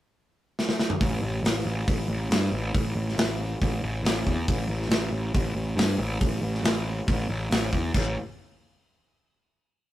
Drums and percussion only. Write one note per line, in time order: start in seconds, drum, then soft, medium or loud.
0.59 snare medium
0.69 snare medium
0.79 snare medium
0.90 mid tom loud
1.01 kick loud
1.01 open hi-hat medium
1.45 snare loud
1.45 open hi-hat medium
1.88 kick loud
1.88 open hi-hat medium
2.31 snare loud
2.31 open hi-hat medium
2.75 kick loud
2.75 open hi-hat medium
3.09 snare soft
3.18 snare loud
3.18 open hi-hat medium
3.62 kick loud
3.62 open hi-hat medium
4.05 snare loud
4.05 open hi-hat medium
4.27 kick medium
4.48 kick loud
4.48 open hi-hat medium
4.82 snare soft
4.90 snare loud
4.90 open hi-hat medium
5.34 kick loud
5.34 open hi-hat medium
5.78 snare loud
5.78 open hi-hat medium
6.21 kick loud
6.21 open hi-hat medium
6.55 snare soft
6.64 snare loud
6.64 open hi-hat medium
7.08 kick loud
7.08 open hi-hat medium
7.51 snare loud
7.51 open hi-hat medium
7.73 kick medium
7.94 kick loud
7.94 crash medium